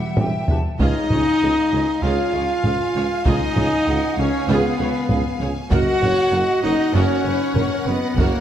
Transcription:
Already playing: trumpet G3, french horn section G3, violin section G4 E5, flute section F#5
0.17 tuba E1, double bass section E1, cello section E2, viola section G4, flute section G5, taiko low-mid
0.48 tuba E1, double bass section E1, cello section E2, viola section G4 B4, flute section A5, taiko low
0.78 cello section C#2, tuba C#2, double bass section C#2, french horn section D#4, trumpet D#4, viola section F4 G#4, flute section C#5, violin section D#5 F5 G#5, taiko
1.10 cello section C#2, tuba C#2, double bass section C#2, viola section G#4 C#5, flute section D#5, taiko low-mid
1.42 cello section C#2, tuba C#2, double bass section C#2, viola section G#4
1.72 cello section C#2, tuba C#2, double bass section C#2, viola section G#4 C#5
2.02 cello section C#2, double bass section C#2, tuba C#2, trumpet F4, french horn section F4, viola section F4 G#4, flute section C#5, violin section F5
2.33 cello section C#2, double bass section C#2, tuba C#2, viola section G#4 C#5, flute section F5
2.64 cello section C#2, double bass section C#2, tuba C#2, viola section G#4, taiko low-mid
2.95 cello section C#2, double bass section C#2, tuba C#2, viola section G#4 C#5
3.25 cello section C#2, double bass section C#2, tuba C#2, french horn section D#4, trumpet D#4, viola section F4 G#4, violin section D#5, flute section G#5, taiko
3.56 cello section C#2, double bass section C#2, tuba C#2, viola section G#4 C#5, taiko low-mid
3.87 double bass section C#2, cello section C#2, tuba C#2, viola section G#4, flute section F#5
4.17 cello section C#2, double bass section C#2, tuba C#2, french horn section C#4, trumpet C#4, viola section G#4 C#5, violin section C#5, flute section F5
4.47 cello section C#2, double bass section C#2, tuba C#2, french horn section B3, trumpet B3, viola section F4 G#4, violin section B4
4.79 cello section C#2, double bass section C#2, tuba C#2, viola section G#4 C#5
5.09 cello section C#2, tuba C#2, double bass section C#2, viola section G#4, taiko low-mid
5.39 cello section C#2, tuba C#2, double bass section C#2, viola section G#4 C#5
5.70 tuba F#1, double bass section F#1, cello section F#2, trumpet F#4, french horn section F#4, viola section F#4 A#4, flute section D#5, violin section F#5, taiko
6.01 tuba F#1, double bass section F#1, cello section F#2, viola section A#4 C#5, flute section C#5, taiko low-mid
6.32 tuba F#1, double bass section F#1, cello section F#2, viola section A#4, flute section D#5
6.62 tuba F#1, double bass section F#1, cello section F#2, trumpet D#4, french horn section D#4, viola section A#4 C#5, violin section D#5
6.93 tuba F#1, double bass section F#1, cello section F#2, trumpet C#4, french horn section C#4, viola section F#4 A#4, flute section C#5, violin section C#5
7.24 tuba F#1, double bass section F#1, cello section F#2, viola section F#4 C#5, flute section B4
7.55 tuba F#1, double bass section F#1, cello section F#2, viola section A#4, flute section A#4, taiko low-mid
7.85 tuba F#1, double bass section F#1, cello section F#2, french horn section B3, trumpet B3, viola section F#4 C#5, violin section B4, flute section D#5
8.17 double bass section F#1, tuba F#1, cello section F#2, trumpet A#3, french horn section A#3, viola section F#4 A#4, violin section A#4, flute section C#5, taiko

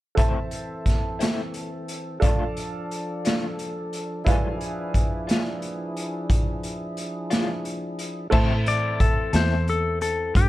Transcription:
0.15 clean electric guitar A2 A3 C4, tonewheel organ E3 C4 A4, upright piano A4 C5 E5 A5, kick, closed hi-hat
0.19 clean electric guitar E4
0.51 closed hi-hat
0.86 kick, snare, closed hi-hat
1.19 clean electric guitar A2 A3 C4 E4, snare, closed hi-hat
1.54 closed hi-hat
1.88 closed hi-hat
2.20 clean electric guitar D3 A3 D4, tonewheel organ F3 D4 A4, upright piano A4 D5 F5 A5, kick, closed hi-hat
2.24 clean electric guitar F4
2.57 closed hi-hat
2.91 closed hi-hat
3.25 clean electric guitar D3 A3 D4 F4, snare, closed hi-hat
3.59 closed hi-hat
3.93 closed hi-hat
4.24 clean electric guitar E3 G#3 D4 F4, tonewheel organ F3 F#3 D4 A4, upright piano E4 B4 D5 F5 G#5, kick, closed hi-hat
4.57 tonewheel organ F3 D4 E4 G#4, closed hi-hat
4.94 kick, closed hi-hat
5.27 clean electric guitar E3 G#3 D4 F4, snare, closed hi-hat
5.62 closed hi-hat
5.97 closed hi-hat
6.30 kick, closed hi-hat
6.63 closed hi-hat
6.97 closed hi-hat
7.30 clean electric guitar E3 G#3 D4 F4, snare, closed hi-hat
7.65 closed hi-hat
7.99 closed hi-hat
8.30 fingered electric bass A2, tonewheel organ E3 C4 A4, clean electric guitar A3 C4 E4 A4, upright piano A4 C5 E5 A5, kick, crash
8.66 electric slide guitar D5, closed hi-hat
9.00 electric slide guitar A4, kick, closed hi-hat
9.33 fingered electric bass E2, clean electric guitar A3 C4 E4 A4, electric slide guitar C5, snare, closed hi-hat
9.68 electric slide guitar A4, closed hi-hat
10.01 electric slide guitar A4, closed hi-hat
10.35 fingered electric bass G2, electric slide guitar G4, kick, closed hi-hat

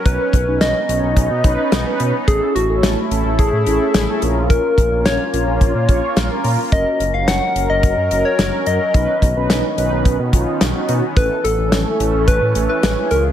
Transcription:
Already playing: analog synth pad C#4
0.05 analog synth bass B1, analog synth pad B3 D#4, analog polysynth C#4 D#4 B4, soft synth lead B4, kick, closed hi-hat
0.33 analog synth bass B1, kick, closed hi-hat
0.47 analog synth bass B1, analog polysynth C#4 D#4 B4
0.61 analog synth bass B1, soft synth lead D#5, snare, closed hi-hat
0.89 analog synth bass B1, analog polysynth C#4 D#4 C#5, closed hi-hat
1.03 analog synth bass B1
1.17 analog synth bass B1, kick, closed hi-hat
1.31 analog synth bass B2
1.44 analog synth bass B1, analog polysynth C#4 D#4 B4, kick, closed hi-hat
1.72 analog synth bass B1, snare, closed hi-hat
1.86 analog polysynth C#4 D#4 B4
2.00 analog synth bass B2, closed hi-hat
2.28 analog synth bass A1, analog synth pad A3 E4, analog polysynth C#4 E4 A4, soft synth lead G#4, kick, closed hi-hat
2.55 analog synth bass A1, soft synth lead F#4, closed hi-hat
2.69 analog synth bass A1, analog polysynth C#4 E4 A4
2.83 analog synth bass A1, snare, closed hi-hat
3.11 analog synth bass A1, analog polysynth C#4 E4 A4, closed hi-hat
3.25 analog synth bass A1
3.39 analog synth bass A1, soft synth lead G#4, kick, closed hi-hat
3.53 analog synth bass A2
3.66 analog synth bass A1, analog polysynth C#4 E4 A4, closed hi-hat
3.94 analog synth bass A1, snare, closed hi-hat
4.08 analog polysynth C#4 E4 A4
4.22 analog synth bass A#1, analog synth pad A#3 F4, analog polysynth C#4 F4 A#4, closed hi-hat
4.50 soft synth lead A#4, kick, closed hi-hat
4.78 analog synth bass A#1, kick, closed hi-hat
4.92 analog synth bass A#1, analog polysynth C#4 F4 A#4
5.06 analog synth bass A#1, soft synth lead C#5, snare, closed hi-hat
5.33 analog synth bass A#1, analog polysynth C#4 F4 A#4, closed hi-hat
5.47 analog synth bass A#1
5.61 analog synth bass A#1, kick, closed hi-hat
5.75 analog synth bass A#2
5.89 analog synth bass A#1, analog polysynth C#4 F4 C#5, kick, closed hi-hat
6.17 analog synth bass A#1, snare, closed hi-hat
6.31 analog polysynth C#4 F4 A#4
6.44 analog synth bass A#2, open hi-hat
6.72 analog synth bass F#1, analog synth pad F#3 A#4, analog polysynth C#4 F#4 A#4, soft synth lead D#5, kick, closed hi-hat
7.00 analog synth bass F#1, closed hi-hat
7.14 analog synth bass F#1, analog polysynth C#4 F#4 C#5, soft synth lead F5
7.28 analog synth bass F#1, soft synth lead F#5, snare, closed hi-hat
7.56 analog synth bass F#1, analog polysynth C#4 F#4 A#4, closed hi-hat
7.69 analog synth bass F#1, soft synth lead D#5
7.83 analog synth bass F#1, kick, closed hi-hat
7.97 analog synth bass F#2
8.11 analog synth bass F#1, analog polysynth C#4 F#4 A#4, closed hi-hat
8.25 soft synth lead C#5
8.39 analog synth bass F#1, snare, closed hi-hat
8.53 analog polysynth C#4 F#4 A#4
8.66 analog synth bass F#2, soft synth lead D#5, closed hi-hat
8.94 analog synth bass B1, analog synth pad D#3 B3, analog polysynth C#4 D#4 B4, kick, closed hi-hat
9.22 analog synth bass B1, kick, closed hi-hat
9.36 analog synth bass B1, analog polysynth C#4 D#4 B4
9.50 analog synth bass B1, snare, closed hi-hat
9.78 analog synth bass B1, analog polysynth C#4 D#4 B4, closed hi-hat
9.92 analog synth bass B1
10.05 analog synth bass B1, kick, closed hi-hat
10.19 analog synth bass B2
10.33 analog synth bass B1, analog polysynth C#4 D#4 F4, kick, closed hi-hat
10.61 analog synth bass B1, snare, closed hi-hat
10.75 analog polysynth C#4 D#4 F#4
10.89 analog synth bass B2, closed hi-hat
11.17 analog synth bass A1, analog synth pad E3 A3 C#4, analog polysynth C#4 E4 A4, soft synth lead B4, kick, closed hi-hat
11.44 analog synth bass A1, soft synth lead A4, closed hi-hat
11.58 analog synth bass A1, analog polysynth C#4 E4 A4
11.72 analog synth bass A1, snare, closed hi-hat
12.00 analog synth bass A1, analog polysynth C#4 E4 A4, closed hi-hat
12.14 analog synth bass A1
12.28 analog synth bass A1, soft synth lead B4, kick, closed hi-hat
12.42 analog synth bass A2
12.55 analog synth bass A1, analog polysynth C#4 E4 A4, closed hi-hat
12.69 soft synth lead B4
12.83 analog synth bass A1, snare, closed hi-hat
12.97 analog polysynth C#4 E4 G#4
13.11 analog synth bass C#2, analog synth pad C#3 G#3 F4, analog polysynth C#4 F4 G#4, soft synth lead A#4, closed hi-hat

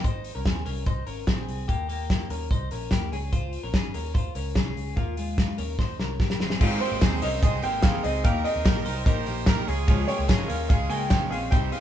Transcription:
0.04 picked electric bass G#1, clean electric guitar D#4 C5, kick, closed hi-hat
0.24 open hi-hat
0.35 picked electric bass C2, clean electric guitar C#4 A#4
0.45 picked electric bass D#2, clean electric guitar C4 G#4, kick, snare, closed hi-hat
0.66 picked electric bass C2, clean electric guitar C#4 A#4, open hi-hat
0.86 clean electric guitar D#4 C5, kick, closed hi-hat
1.07 picked electric bass G#1, clean electric guitar C#4 A#4, open hi-hat
1.27 picked electric bass A#1, clean electric guitar C4 G#4, kick, snare, closed hi-hat
1.48 picked electric bass C2, open hi-hat
1.68 picked electric bass D#2, clean electric guitar A#3 G4, kick, closed hi-hat
1.89 clean electric guitar A#3 G4, open hi-hat
2.10 kick, snare, closed hi-hat
2.30 picked electric bass D#2, clean electric guitar C#4 A#4, open hi-hat
2.51 picked electric bass C2, clean electric guitar D#4 C5, kick, closed hi-hat
2.71 picked electric bass A#1, clean electric guitar C#4 A#4, open hi-hat
2.91 picked electric bass D#2, clean electric guitar A#3 G4, kick, snare, closed hi-hat
3.12 picked electric bass C#2, clean electric guitar C#4 G#4, open hi-hat
3.32 clean electric guitar F4 C5, kick, closed hi-hat
3.53 open hi-hat
3.63 picked electric bass A#1, clean electric guitar C#4 A#4
3.74 picked electric bass G#1, clean electric guitar C#4 G#4, kick, snare, closed hi-hat
3.94 picked electric bass D#2, clean electric guitar C#4 A#4, open hi-hat
4.14 clean electric guitar F4 C5, kick, closed hi-hat
4.35 picked electric bass C#2, clean electric guitar C#4 A#4, open hi-hat
4.55 picked electric bass C2, clean electric guitar C#4 G#4, kick, snare, closed hi-hat
4.76 picked electric bass C#2, open hi-hat
4.96 picked electric bass D#2, clean electric guitar A#3 F4, kick, closed hi-hat
5.17 clean electric guitar G#3 F4, open hi-hat
5.38 kick, snare, closed hi-hat
5.58 picked electric bass D#2, clean electric guitar C#4 A#4, open hi-hat
5.79 picked electric bass D#2, clean electric guitar D#4 C5, kick, snare
5.99 picked electric bass C2, clean electric guitar C#4 A#4, snare
6.20 picked electric bass A#1, clean electric guitar A#3 G4, kick, snare
6.30 snare
6.40 picked electric bass G1, clean electric guitar C4 G#4, snare
6.50 snare
6.61 picked electric bass G#1, clean electric guitar G#2 D#3 G#3 C4 D#4 F4 C5, trumpet C5, kick, crash
6.80 clean electric guitar G#3 A#3 C4 D#4 G4 C5, upright piano C5, open hi-hat
6.92 picked electric bass G#1
7.01 picked electric bass D#2, clean electric guitar G#2 D#3 G#3 C4 D#4 G#4 C5, kick, snare, clap, hi-hat pedal, ride
7.22 picked electric bass C2, clean electric guitar G#3 C4 C#4 D#4 A#4 C5, upright piano D#5, open hi-hat
7.42 picked electric bass C2, clean electric guitar G#3 C4 D#4 G#4 C5, upright piano D#5, kick, hi-hat pedal, ride
7.63 picked electric bass G#1, clean electric guitar G#3 A#3 C4 D#4 G4 C5, upright piano G5, open hi-hat
7.83 clean electric guitar G#2 D#3 G#3 C4 D#4 C5, trumpet G#4, upright piano F5, kick, snare, clap, hi-hat pedal, ride
8.03 picked electric bass C#2, clean electric guitar G#3 C4 D#4 G#4 C5, upright piano D#5, open hi-hat
8.24 picked electric bass D#2, clean electric guitar D#3 A#3 D#4 G4 A#4, trumpet A#4, upright piano F5, kick, hi-hat pedal, ride
8.44 clean electric guitar C4 D#4 G4 G#4 A#4, upright piano D#5, open hi-hat
8.56 picked electric bass D#2
8.65 picked electric bass A#1, clean electric guitar D#3 A#3 D#4 G4 A#4, kick, snare, clap, hi-hat pedal, ride
8.85 picked electric bass C2, clean electric guitar D#4 G4 A#4 C5, open hi-hat
9.06 picked electric bass A#1, clean electric guitar A#3 D#4 G4 A#4, trumpet C5, kick, hi-hat pedal, ride
9.26 picked electric bass A#1, clean electric guitar A#3 D#4 G4 A#4, open hi-hat
9.46 clean electric guitar D#3 A#3 D#4 G4 A#4, trumpet A#4, kick, snare, clap, hi-hat pedal, ride
9.67 picked electric bass C#2, clean electric guitar G#3 C#4 F4 G#4 C#5, trumpet G#4, open hi-hat
9.88 clean electric guitar C#3 F3 G#3 C#4 F4 C#5, kick, hi-hat pedal, ride
10.08 clean electric guitar G#3 A#3 C#4 F4 G4 C#5, upright piano C#5, open hi-hat
10.19 picked electric bass C#2
10.29 clean electric guitar C#3 F3 G#3 C#4 F4 G#4 C#5, trumpet A#4, kick, snare, clap, hi-hat pedal, ride
10.48 picked electric bass D#2, clean electric guitar G#3 C#4 F4 A#4 C#5, upright piano F5, open hi-hat
10.69 picked electric bass C#2, clean electric guitar G#3 C#4 F4 G#4 C#5, trumpet G#4, upright piano F5, kick, hi-hat pedal, ride
10.90 picked electric bass C#2, clean electric guitar G#3 A#3 C#4 F4 C#5 G5, upright piano G#5, open hi-hat
11.10 clean electric guitar C#3 F3 G#3 C#4 F4 C#5, upright piano G5, kick, snare, clap, hi-hat pedal, ride
11.31 picked electric bass A#1, clean electric guitar G#3 C4 C#4 F4 G#4 C#5, upright piano F5, open hi-hat
11.51 picked electric bass C2, clean electric guitar C3 G3 C4 D#4 G4 C5, trumpet G4, upright piano G5, kick, hi-hat pedal, ride
11.72 clean electric guitar C4 D#4 G4 G#4 C5, upright piano F5, open hi-hat

